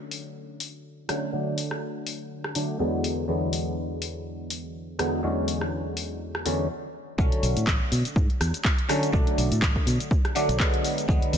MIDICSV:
0, 0, Header, 1, 4, 480
1, 0, Start_track
1, 0, Tempo, 487805
1, 1312, Time_signature, 4, 2, 24, 8
1, 11195, End_track
2, 0, Start_track
2, 0, Title_t, "Clav"
2, 0, Program_c, 0, 7
2, 0, Note_on_c, 0, 50, 71
2, 0, Note_on_c, 0, 54, 65
2, 0, Note_on_c, 0, 57, 66
2, 0, Note_on_c, 0, 61, 79
2, 1042, Note_off_c, 0, 50, 0
2, 1044, Note_off_c, 0, 54, 0
2, 1047, Note_off_c, 0, 57, 0
2, 1049, Note_off_c, 0, 61, 0
2, 1069, Note_on_c, 0, 50, 68
2, 1072, Note_on_c, 0, 54, 62
2, 1074, Note_on_c, 0, 57, 61
2, 1077, Note_on_c, 0, 61, 76
2, 1285, Note_off_c, 0, 50, 0
2, 1286, Note_off_c, 0, 54, 0
2, 1287, Note_off_c, 0, 57, 0
2, 1289, Note_off_c, 0, 61, 0
2, 1304, Note_on_c, 0, 50, 78
2, 1310, Note_on_c, 0, 54, 74
2, 1314, Note_on_c, 0, 57, 72
2, 1320, Note_on_c, 0, 62, 88
2, 2482, Note_off_c, 0, 50, 0
2, 2485, Note_off_c, 0, 54, 0
2, 2487, Note_off_c, 0, 57, 0
2, 2490, Note_off_c, 0, 62, 0
2, 2510, Note_on_c, 0, 50, 73
2, 2512, Note_on_c, 0, 54, 64
2, 2515, Note_on_c, 0, 57, 66
2, 2518, Note_on_c, 0, 62, 80
2, 2725, Note_off_c, 0, 50, 0
2, 2726, Note_off_c, 0, 54, 0
2, 2728, Note_off_c, 0, 57, 0
2, 2729, Note_off_c, 0, 62, 0
2, 2749, Note_on_c, 0, 40, 86
2, 2750, Note_on_c, 0, 50, 80
2, 2752, Note_on_c, 0, 54, 78
2, 2754, Note_on_c, 0, 56, 77
2, 2756, Note_on_c, 0, 59, 93
2, 3204, Note_off_c, 0, 40, 0
2, 3205, Note_off_c, 0, 50, 0
2, 3206, Note_off_c, 0, 54, 0
2, 3207, Note_off_c, 0, 56, 0
2, 3208, Note_off_c, 0, 59, 0
2, 3226, Note_on_c, 0, 40, 75
2, 3230, Note_on_c, 0, 50, 67
2, 3233, Note_on_c, 0, 54, 67
2, 3238, Note_on_c, 0, 56, 67
2, 3240, Note_on_c, 0, 59, 83
2, 4883, Note_off_c, 0, 40, 0
2, 4885, Note_off_c, 0, 50, 0
2, 4887, Note_off_c, 0, 54, 0
2, 4889, Note_off_c, 0, 56, 0
2, 4890, Note_off_c, 0, 59, 0
2, 4908, Note_on_c, 0, 40, 69
2, 4910, Note_on_c, 0, 50, 66
2, 4912, Note_on_c, 0, 54, 65
2, 4914, Note_on_c, 0, 56, 65
2, 4916, Note_on_c, 0, 59, 76
2, 5124, Note_off_c, 0, 40, 0
2, 5125, Note_off_c, 0, 50, 0
2, 5126, Note_off_c, 0, 54, 0
2, 5127, Note_off_c, 0, 56, 0
2, 5128, Note_off_c, 0, 59, 0
2, 5146, Note_on_c, 0, 40, 85
2, 5150, Note_on_c, 0, 50, 77
2, 5153, Note_on_c, 0, 54, 75
2, 5157, Note_on_c, 0, 56, 77
2, 5161, Note_on_c, 0, 61, 93
2, 6323, Note_off_c, 0, 40, 0
2, 6325, Note_off_c, 0, 50, 0
2, 6326, Note_off_c, 0, 54, 0
2, 6328, Note_off_c, 0, 56, 0
2, 6331, Note_off_c, 0, 61, 0
2, 6349, Note_on_c, 0, 40, 73
2, 6352, Note_on_c, 0, 50, 67
2, 6353, Note_on_c, 0, 54, 68
2, 6356, Note_on_c, 0, 56, 65
2, 6358, Note_on_c, 0, 61, 81
2, 6565, Note_off_c, 0, 40, 0
2, 6566, Note_off_c, 0, 50, 0
2, 6567, Note_off_c, 0, 54, 0
2, 6568, Note_off_c, 0, 56, 0
2, 6569, Note_off_c, 0, 61, 0
2, 7066, Note_on_c, 0, 50, 81
2, 7072, Note_on_c, 0, 54, 74
2, 7077, Note_on_c, 0, 57, 77
2, 7082, Note_on_c, 0, 61, 91
2, 8723, Note_off_c, 0, 50, 0
2, 8726, Note_off_c, 0, 54, 0
2, 8728, Note_off_c, 0, 57, 0
2, 8731, Note_off_c, 0, 61, 0
2, 8744, Note_on_c, 0, 50, 78
2, 8748, Note_on_c, 0, 54, 72
2, 8750, Note_on_c, 0, 57, 71
2, 8753, Note_on_c, 0, 61, 83
2, 8962, Note_off_c, 0, 50, 0
2, 8964, Note_off_c, 0, 54, 0
2, 8965, Note_off_c, 0, 57, 0
2, 8966, Note_off_c, 0, 61, 0
2, 8979, Note_on_c, 0, 50, 89
2, 8986, Note_on_c, 0, 54, 83
2, 8990, Note_on_c, 0, 57, 84
2, 8996, Note_on_c, 0, 62, 101
2, 10160, Note_off_c, 0, 50, 0
2, 10163, Note_off_c, 0, 54, 0
2, 10165, Note_off_c, 0, 57, 0
2, 10168, Note_off_c, 0, 62, 0
2, 10186, Note_on_c, 0, 50, 82
2, 10190, Note_on_c, 0, 54, 74
2, 10192, Note_on_c, 0, 57, 73
2, 10194, Note_on_c, 0, 62, 89
2, 10403, Note_off_c, 0, 50, 0
2, 10405, Note_off_c, 0, 54, 0
2, 10406, Note_off_c, 0, 57, 0
2, 10407, Note_off_c, 0, 62, 0
2, 10427, Note_on_c, 0, 50, 98
2, 10429, Note_on_c, 0, 54, 87
2, 10432, Note_on_c, 0, 56, 90
2, 10435, Note_on_c, 0, 59, 105
2, 10884, Note_off_c, 0, 50, 0
2, 10885, Note_off_c, 0, 54, 0
2, 10886, Note_off_c, 0, 56, 0
2, 10888, Note_off_c, 0, 59, 0
2, 10903, Note_on_c, 0, 50, 82
2, 10909, Note_on_c, 0, 54, 76
2, 10914, Note_on_c, 0, 56, 77
2, 10918, Note_on_c, 0, 59, 93
2, 11195, Note_off_c, 0, 50, 0
2, 11195, Note_off_c, 0, 54, 0
2, 11195, Note_off_c, 0, 56, 0
2, 11195, Note_off_c, 0, 59, 0
2, 11195, End_track
3, 0, Start_track
3, 0, Title_t, "Fingered electric bass"
3, 0, Program_c, 1, 33
3, 7070, Note_on_c, 1, 35, 95
3, 7169, Note_off_c, 1, 35, 0
3, 7309, Note_on_c, 1, 35, 90
3, 7409, Note_off_c, 1, 35, 0
3, 7443, Note_on_c, 1, 45, 78
3, 7524, Note_off_c, 1, 45, 0
3, 7549, Note_on_c, 1, 33, 94
3, 7649, Note_off_c, 1, 33, 0
3, 7790, Note_on_c, 1, 47, 81
3, 7890, Note_off_c, 1, 47, 0
3, 8029, Note_on_c, 1, 44, 95
3, 8129, Note_off_c, 1, 44, 0
3, 8270, Note_on_c, 1, 40, 84
3, 8370, Note_off_c, 1, 40, 0
3, 8988, Note_on_c, 1, 35, 97
3, 9088, Note_off_c, 1, 35, 0
3, 9228, Note_on_c, 1, 35, 90
3, 9329, Note_off_c, 1, 35, 0
3, 9361, Note_on_c, 1, 45, 79
3, 9443, Note_off_c, 1, 45, 0
3, 9468, Note_on_c, 1, 33, 95
3, 9569, Note_off_c, 1, 33, 0
3, 9708, Note_on_c, 1, 47, 80
3, 9809, Note_off_c, 1, 47, 0
3, 10320, Note_on_c, 1, 35, 90
3, 10402, Note_off_c, 1, 35, 0
3, 10909, Note_on_c, 1, 40, 101
3, 11009, Note_off_c, 1, 40, 0
3, 11150, Note_on_c, 1, 40, 89
3, 11195, Note_off_c, 1, 40, 0
3, 11195, End_track
4, 0, Start_track
4, 0, Title_t, "Drums"
4, 113, Note_on_c, 9, 46, 92
4, 211, Note_off_c, 9, 46, 0
4, 593, Note_on_c, 9, 46, 91
4, 691, Note_off_c, 9, 46, 0
4, 1073, Note_on_c, 9, 37, 70
4, 1073, Note_on_c, 9, 46, 92
4, 1171, Note_off_c, 9, 37, 0
4, 1171, Note_off_c, 9, 46, 0
4, 1552, Note_on_c, 9, 46, 93
4, 1651, Note_off_c, 9, 46, 0
4, 1684, Note_on_c, 9, 37, 55
4, 1782, Note_off_c, 9, 37, 0
4, 2032, Note_on_c, 9, 46, 94
4, 2131, Note_off_c, 9, 46, 0
4, 2405, Note_on_c, 9, 37, 57
4, 2503, Note_off_c, 9, 37, 0
4, 2511, Note_on_c, 9, 46, 98
4, 2610, Note_off_c, 9, 46, 0
4, 2994, Note_on_c, 9, 46, 96
4, 3092, Note_off_c, 9, 46, 0
4, 3472, Note_on_c, 9, 46, 97
4, 3570, Note_off_c, 9, 46, 0
4, 3954, Note_on_c, 9, 46, 98
4, 4052, Note_off_c, 9, 46, 0
4, 4432, Note_on_c, 9, 46, 102
4, 4531, Note_off_c, 9, 46, 0
4, 4913, Note_on_c, 9, 37, 78
4, 4913, Note_on_c, 9, 46, 100
4, 5012, Note_off_c, 9, 37, 0
4, 5012, Note_off_c, 9, 46, 0
4, 5392, Note_on_c, 9, 46, 94
4, 5490, Note_off_c, 9, 46, 0
4, 5524, Note_on_c, 9, 37, 60
4, 5623, Note_off_c, 9, 37, 0
4, 5873, Note_on_c, 9, 46, 98
4, 5971, Note_off_c, 9, 46, 0
4, 6247, Note_on_c, 9, 37, 62
4, 6345, Note_off_c, 9, 37, 0
4, 6353, Note_on_c, 9, 46, 100
4, 6451, Note_off_c, 9, 46, 0
4, 7070, Note_on_c, 9, 36, 118
4, 7080, Note_on_c, 9, 82, 34
4, 7169, Note_off_c, 9, 36, 0
4, 7178, Note_off_c, 9, 82, 0
4, 7205, Note_on_c, 9, 42, 54
4, 7303, Note_off_c, 9, 42, 0
4, 7312, Note_on_c, 9, 46, 103
4, 7319, Note_on_c, 9, 82, 78
4, 7411, Note_off_c, 9, 46, 0
4, 7417, Note_off_c, 9, 82, 0
4, 7445, Note_on_c, 9, 42, 71
4, 7452, Note_on_c, 9, 82, 45
4, 7544, Note_off_c, 9, 42, 0
4, 7550, Note_off_c, 9, 82, 0
4, 7550, Note_on_c, 9, 36, 121
4, 7550, Note_on_c, 9, 39, 121
4, 7559, Note_on_c, 9, 82, 33
4, 7648, Note_off_c, 9, 36, 0
4, 7648, Note_off_c, 9, 39, 0
4, 7658, Note_off_c, 9, 82, 0
4, 7792, Note_on_c, 9, 46, 105
4, 7799, Note_on_c, 9, 82, 77
4, 7890, Note_off_c, 9, 46, 0
4, 7897, Note_off_c, 9, 82, 0
4, 7924, Note_on_c, 9, 42, 68
4, 7931, Note_on_c, 9, 82, 45
4, 8022, Note_off_c, 9, 42, 0
4, 8029, Note_off_c, 9, 82, 0
4, 8029, Note_on_c, 9, 36, 121
4, 8039, Note_on_c, 9, 82, 34
4, 8127, Note_off_c, 9, 36, 0
4, 8137, Note_off_c, 9, 82, 0
4, 8166, Note_on_c, 9, 42, 37
4, 8264, Note_off_c, 9, 42, 0
4, 8273, Note_on_c, 9, 37, 84
4, 8273, Note_on_c, 9, 46, 106
4, 8280, Note_on_c, 9, 82, 82
4, 8372, Note_off_c, 9, 37, 0
4, 8372, Note_off_c, 9, 46, 0
4, 8379, Note_off_c, 9, 82, 0
4, 8405, Note_on_c, 9, 42, 68
4, 8412, Note_on_c, 9, 82, 44
4, 8503, Note_off_c, 9, 42, 0
4, 8509, Note_on_c, 9, 36, 122
4, 8509, Note_on_c, 9, 39, 118
4, 8510, Note_off_c, 9, 82, 0
4, 8519, Note_on_c, 9, 82, 33
4, 8607, Note_off_c, 9, 36, 0
4, 8608, Note_off_c, 9, 39, 0
4, 8617, Note_off_c, 9, 82, 0
4, 8645, Note_on_c, 9, 42, 55
4, 8743, Note_off_c, 9, 42, 0
4, 8752, Note_on_c, 9, 37, 79
4, 8752, Note_on_c, 9, 46, 108
4, 8759, Note_on_c, 9, 82, 76
4, 8850, Note_off_c, 9, 37, 0
4, 8850, Note_off_c, 9, 46, 0
4, 8857, Note_off_c, 9, 82, 0
4, 8885, Note_on_c, 9, 42, 69
4, 8892, Note_on_c, 9, 82, 43
4, 8983, Note_off_c, 9, 42, 0
4, 8988, Note_on_c, 9, 36, 118
4, 8990, Note_off_c, 9, 82, 0
4, 8998, Note_on_c, 9, 82, 32
4, 9087, Note_off_c, 9, 36, 0
4, 9096, Note_off_c, 9, 82, 0
4, 9123, Note_on_c, 9, 42, 52
4, 9222, Note_off_c, 9, 42, 0
4, 9232, Note_on_c, 9, 46, 108
4, 9239, Note_on_c, 9, 82, 72
4, 9330, Note_off_c, 9, 46, 0
4, 9337, Note_off_c, 9, 82, 0
4, 9365, Note_on_c, 9, 42, 67
4, 9371, Note_on_c, 9, 82, 44
4, 9463, Note_off_c, 9, 42, 0
4, 9469, Note_on_c, 9, 36, 124
4, 9470, Note_off_c, 9, 82, 0
4, 9470, Note_on_c, 9, 39, 120
4, 9479, Note_on_c, 9, 82, 32
4, 9567, Note_off_c, 9, 36, 0
4, 9568, Note_off_c, 9, 39, 0
4, 9578, Note_off_c, 9, 82, 0
4, 9601, Note_on_c, 9, 36, 66
4, 9700, Note_off_c, 9, 36, 0
4, 9712, Note_on_c, 9, 46, 109
4, 9719, Note_on_c, 9, 82, 76
4, 9811, Note_off_c, 9, 46, 0
4, 9817, Note_off_c, 9, 82, 0
4, 9844, Note_on_c, 9, 42, 66
4, 9851, Note_on_c, 9, 82, 45
4, 9943, Note_off_c, 9, 42, 0
4, 9948, Note_on_c, 9, 36, 121
4, 9950, Note_off_c, 9, 82, 0
4, 9959, Note_on_c, 9, 82, 32
4, 10047, Note_off_c, 9, 36, 0
4, 10058, Note_off_c, 9, 82, 0
4, 10085, Note_on_c, 9, 37, 64
4, 10085, Note_on_c, 9, 42, 36
4, 10183, Note_off_c, 9, 37, 0
4, 10183, Note_off_c, 9, 42, 0
4, 10191, Note_on_c, 9, 46, 112
4, 10198, Note_on_c, 9, 82, 78
4, 10289, Note_off_c, 9, 46, 0
4, 10296, Note_off_c, 9, 82, 0
4, 10324, Note_on_c, 9, 42, 66
4, 10331, Note_on_c, 9, 82, 42
4, 10422, Note_off_c, 9, 42, 0
4, 10429, Note_off_c, 9, 82, 0
4, 10429, Note_on_c, 9, 36, 124
4, 10429, Note_on_c, 9, 39, 121
4, 10439, Note_on_c, 9, 82, 32
4, 10527, Note_off_c, 9, 36, 0
4, 10527, Note_off_c, 9, 39, 0
4, 10537, Note_off_c, 9, 82, 0
4, 10565, Note_on_c, 9, 42, 53
4, 10663, Note_off_c, 9, 42, 0
4, 10671, Note_on_c, 9, 46, 107
4, 10678, Note_on_c, 9, 82, 75
4, 10770, Note_off_c, 9, 46, 0
4, 10777, Note_off_c, 9, 82, 0
4, 10805, Note_on_c, 9, 42, 67
4, 10812, Note_on_c, 9, 82, 43
4, 10903, Note_off_c, 9, 42, 0
4, 10909, Note_on_c, 9, 36, 123
4, 10910, Note_off_c, 9, 82, 0
4, 10919, Note_on_c, 9, 82, 33
4, 11008, Note_off_c, 9, 36, 0
4, 11018, Note_off_c, 9, 82, 0
4, 11044, Note_on_c, 9, 42, 51
4, 11142, Note_off_c, 9, 42, 0
4, 11151, Note_on_c, 9, 46, 105
4, 11158, Note_on_c, 9, 82, 71
4, 11195, Note_off_c, 9, 46, 0
4, 11195, Note_off_c, 9, 82, 0
4, 11195, End_track
0, 0, End_of_file